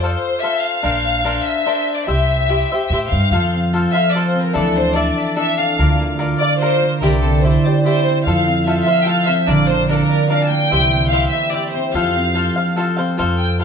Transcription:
Already playing: F2
0.02 F4 A4 C5 D5 F5
0.10 C5
0.39 F4 A4 E5
0.44 C5 F5
0.59 F5
0.83 A#1 D4 A#4 C5 F5
1.25 D4 A#4 C5 F5
1.43 E5
1.66 D4 A#4 C5
1.95 D5
2.06 C2 E4 G4 C5 E5
2.49 E4 G4 C5 E5
2.72 G4 C5 E5
2.87 A2 E5
2.92 E4 G4 C5 E5
3.06 F5
3.12 G2
3.31 F2 F3 F4 A4 C5 F5
3.53 C4
3.73 F4 A4 C5 F5
3.91 C5 E5 F5
3.95 A4
4.11 F4 D5
4.15 A4 C5 F5
4.28 C5
4.35 C4
4.41 A#4
4.53 D2 E3 D4 A4 D5 E5
4.76 D4 C5
4.93 D4 A4 D5 E5
5.18 E5
5.36 D4 A4 D5 E5
5.58 D4 F5
5.78 D2 D3 F4 A#4 D5 F5
5.99 A#3
6.19 F4 A#4 D5 F5
6.38 A#4 D5 F5
6.59 F4 A#4 C5 F5
6.63 D5
6.82 A#3
7.01 C2 D3 E4 G4 A#4 C5 D5
7.21 C4 A4
7.40 E4 C5
7.45 E4 G4 C5 D5
7.64 G4 C5 D5
7.82 E4 G4 C5
7.86 C5 D5
8.07 C4
8.25 F2 F3 F4 A4 C5 F5
8.46 C4
8.66 F4 A4 C5 E5 F5
8.73 F5
8.79 E5
8.86 A4 C5 F5
9.03 F4 A4 G5
9.07 A4 C5 F5
9.25 C4 A4 C5 E5 F5
9.47 A#1 D3 D4 A#4 D5 F5
9.67 A#3 C5
9.88 D4 F4 A#4 D5 F5
9.94 A4
10.02 A#4
10.09 D5
10.28 D4 F4 A#4 D5 F5
10.43 A5
10.48 A#3 G5
10.70 C2 E3 E4 G4 C5 E5
10.92 C4
11.10 E4 G4 C5 F5
11.14 E5
11.28 E5
11.33 E5
11.51 E4 G4 C5 D5 E5
11.71 C4 C5
11.93 F2 F3 F4 A4 C5 F5
12.16 C4
12.35 F4 A4 C5 F5
12.55 A4 C5 F5
12.76 F4 A4 C5 F5
12.97 C4 A4 C5 F5
13.17 F2 F4 A4 C5 F5
13.39 G5
13.59 F4 A4 C5 F5

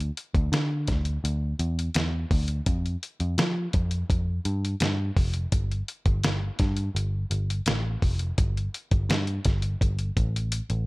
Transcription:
0.00 closed hi-hat
0.17 closed hi-hat
0.34 D2, kick, closed hi-hat
0.52 D3, snare, closed hi-hat
0.88 D2, kick, snare, closed hi-hat
1.05 closed hi-hat
1.24 D2, closed hi-hat
1.59 E2, closed hi-hat
1.79 closed hi-hat
1.95 E2, snare, closed hi-hat
2.31 D2, kick, open hi-hat
2.48 closed hi-hat
2.66 F2, kick, closed hi-hat
2.86 closed hi-hat
3.03 closed hi-hat
3.20 F2, closed hi-hat
3.38 F3, snare, closed hi-hat
3.73 F2, kick, closed hi-hat
3.91 closed hi-hat
4.10 F2, kick, closed hi-hat
4.45 G2, closed hi-hat
4.65 closed hi-hat
4.80 G2, snare, closed hi-hat
5.17 F1, kick, open hi-hat
5.34 closed hi-hat
5.52 G1, kick, closed hi-hat
5.72 closed hi-hat
5.88 closed hi-hat
6.06 G1, kick, closed hi-hat
6.24 snare, closed hi-hat
6.59 G2, kick, snare, closed hi-hat
6.77 closed hi-hat
6.95 G1, closed hi-hat
7.31 G1, closed hi-hat
7.50 closed hi-hat
7.66 A1, snare, closed hi-hat
8.02 F1, kick, open hi-hat
8.19 closed hi-hat
8.38 G1, kick, closed hi-hat
8.57 closed hi-hat
8.74 closed hi-hat
8.91 G1, kick, closed hi-hat
9.09 G2, snare, closed hi-hat
9.27 closed hi-hat
9.45 G1, kick, snare, closed hi-hat
9.62 closed hi-hat
9.81 G1, kick, closed hi-hat
9.99 closed hi-hat
10.17 A1, kick, closed hi-hat
10.36 closed hi-hat
10.52 closed hi-hat
10.70 A1, closed hi-hat

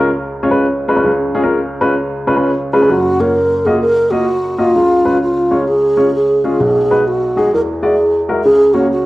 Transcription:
Already playing: C#2 C#3
0.43 G#3 C#4 F4 C#5
0.50 G#3 C#4 F4 B4
0.88 G#3 C#4 F4 B4
0.96 G#3 C#4 F4 B4
1.04 C#2 C#3
1.34 G#3 C#4 F4 G#4
1.43 G#3 C#4 F4 A#4
1.81 G#3 C#4 F4 B4
2.27 G#3 C#4 F4 B4
2.36 G#3 C#4 F4 B4
2.73 G#3 C#4 F4 G#4 B4
2.82 G#3 C#4 F4 B4
2.89 F#1 F#2 F#4
3.20 A#3 F4 F#4 A#4 C#5
3.65 A#3 F4 F#4 G#4 D#5
3.81 A#4
4.11 A#3 F4 F#4 D#5
4.58 A#3 F4 F#4 D#5
4.75 C#2 C#3
5.05 G#3 C#4 F4 B4
5.22 F4
5.51 G#3 C#4 F4 C#5
5.68 G#4
5.97 G#3 C#4 F4 C#5
6.15 G#4
6.44 G#3 C#4 F4 G#4
6.60 B1 B2 G#4
6.90 G#3 D#4 F#4 B4
7.08 F#4
7.37 G#3 D#4 F#4 G#4
7.53 E2 E3 A#4
7.82 G#3 E4 F#4 G#4 D5
8.29 G#3 E4 F#4 A#4
8.44 C#2 C#3 G#4
8.73 A#3 C#4 F#4 C#5
8.91 F#4

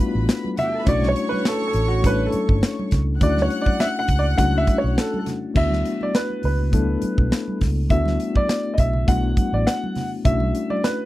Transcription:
Already playing: A3 B3 D4 E4 F4 F#4 A4 B4 B5
0.15 A1
0.28 snare, closed hi-hat, muted conga
0.45 muted conga, high conga
0.57 F#4 E5 F#5, closed hi-hat, low conga
0.66 G4 G5
0.73 A4 A5
0.79 B4 B5
0.86 B1 A3 C#4 D4 E4 F#4 C#5 D5 C#6, kick, closed hi-hat, low conga
1.02 snare, muted conga, high conga
1.09 C#5
1.16 closed hi-hat
1.29 B4, high conga
1.45 A4, snare, closed hi-hat, muted conga
1.62 muted conga
1.67 A4
1.73 A1, closed hi-hat
1.88 F#4
2.02 A3 C#4 D4 E4 A4, kick, closed hi-hat, muted conga, high conga
2.07 B4
2.26 A4
2.32 muted fingered electric bass stroke, closed hi-hat, high conga
2.49 G1, kick
2.62 snare, closed hi-hat, muted conga
2.79 muted conga, high conga
2.91 C#2, kick, snare, closed hi-hat, low conga
3.20 D2 A3 C#4 D4 E4 F#4 D5 F#5 F#6, kick, closed hi-hat, muted conga, low conga
3.36 snare, muted conga, high conga
3.42 C#5
3.50 closed hi-hat
3.62 D5
3.66 kick, high conga
3.80 E5, snare, closed hi-hat, muted conga
3.99 F#5
4.08 C#2, kick, closed hi-hat
4.19 D5
4.37 C#2 A3 C#4 D4 E4 F#4 F#5, kick, closed hi-hat, muted conga, high conga
4.55 E5, muted conga
4.67 kick, closed hi-hat, high conga
4.78 C#5
4.84 B1
4.98 A4, snare, closed hi-hat
5.14 high conga
5.19 A4
5.26 snare, closed hi-hat, low conga
5.54 D2 A3 B3 D4 E4 F#4 E5, kick, crash, low conga
5.71 snare, muted conga, high conga
5.85 closed hi-hat
6.01 D5, high conga
6.14 B4, snare, closed hi-hat, muted conga
6.30 muted conga
6.43 C#2 B4, open hi-hat
6.59 low conga
6.72 A3 B3 D4 E4 A4, kick, closed hi-hat, muted conga, high conga
7.02 muted fingered electric bass stroke, closed hi-hat, high conga
7.17 B1, kick, high conga
7.31 snare, closed hi-hat, muted conga
7.48 high conga
7.61 C#2, kick, snare, open hi-hat, low conga
7.89 D2 A3 B3 D4 E4 F#4 E5, kick, closed hi-hat, muted conga, low conga
8.05 snare, muted conga, high conga
8.20 closed hi-hat
8.35 D5, kick, high conga
8.49 snare, closed hi-hat
8.74 D#5, closed hi-hat
8.78 B1 E5, kick
8.93 low conga
9.07 B1 A3 B3 D4 E4 F#4 F#5, kick, closed hi-hat, muted conga, high conga
9.24 muted conga
9.37 kick, closed hi-hat, high conga
9.53 A1 D5, high conga
9.67 F#5, snare, closed hi-hat, muted conga
9.84 high conga
9.95 snare, open hi-hat, low conga
10.25 B1 A3 C#4 D4 E4 F#4 E5, kick, closed hi-hat, muted conga, low conga
10.40 muted conga, high conga
10.55 closed hi-hat
10.70 D5, high conga
10.83 B4, snare, closed hi-hat, muted conga

